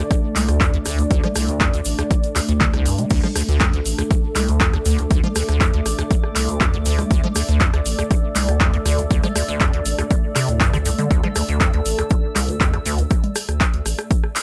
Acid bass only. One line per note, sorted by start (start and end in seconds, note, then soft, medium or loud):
0.11 0.15 D1 medium
0.36 0.50 C2 medium
0.49 0.59 D2 loud
0.61 0.71 F2 medium
0.73 0.78 E2 medium
0.86 1.00 D2 loud
0.99 1.03 C2 medium
1.11 1.21 D2 loud
1.23 1.28 F3 loud
1.36 1.50 C2 medium
1.49 1.58 D2 loud
1.61 1.71 F2 medium
1.74 1.80 D2 medium
1.98 2.02 D2 medium
2.10 2.15 D1 medium
2.36 2.40 D2 loud
2.49 2.53 D2 medium
2.61 2.65 D3 loud
2.73 2.87 C2 loud
2.86 3.00 G2 medium
2.98 3.05 C3 medium
3.11 3.21 D2 loud
3.23 3.27 F3 loud
3.36 3.43 D2 medium
3.48 3.58 D2 loud
3.73 3.80 D2 medium
3.98 4.02 D2 medium
4.11 4.15 D1 medium
4.36 4.50 C2 medium
4.49 4.59 D2 loud
4.61 4.71 F2 medium
4.74 4.78 E2 medium
4.86 5.00 D2 loud
4.99 5.03 C2 medium
5.11 5.21 D2 loud
5.24 5.28 F3 loud
5.36 5.43 D2 medium
5.49 5.59 D2 loud
5.61 5.71 F2 medium
5.74 5.80 D2 medium
5.99 6.03 D2 medium
6.11 6.15 D1 medium
6.36 6.50 C2 medium
6.49 6.59 D2 loud
6.61 6.71 F2 medium
6.74 6.78 E2 medium
6.86 7.00 D2 loud
6.99 7.03 C2 medium
7.11 7.21 D2 loud
7.24 7.28 F3 loud
7.36 7.43 D2 medium
7.49 7.59 D2 loud
7.61 7.71 F2 medium
7.74 7.80 D2 medium
7.99 8.03 D2 medium
8.11 8.15 D1 medium
8.36 8.50 C2 medium
8.49 8.59 D2 loud
8.61 8.71 F2 medium
8.74 8.78 E2 medium
8.86 9.00 D2 loud
8.99 9.03 C2 medium
9.11 9.21 D2 loud
9.23 9.27 F3 loud
9.36 9.43 D2 medium
9.48 9.58 D2 loud
9.61 9.71 F2 medium
9.73 9.80 D2 medium
9.99 10.03 D2 medium
10.11 10.15 D1 medium
10.36 10.50 C3 loud
10.49 10.59 A2 medium
10.61 10.71 G2 loud
10.74 10.78 D3 loud
10.86 10.90 F2 medium
10.99 11.09 D3 medium
11.11 11.21 D2 loud
11.24 11.28 F3 loud
11.36 11.43 D2 medium
11.49 11.59 D2 loud
11.61 11.71 F2 medium
11.74 11.80 D2 medium
11.99 12.03 D2 medium
12.11 12.15 D1 medium
12.36 12.50 C2 medium
12.49 12.59 D2 loud
12.61 12.71 F2 medium
12.74 12.78 E2 medium
12.86 13.00 D2 loud
12.99 13.03 C2 medium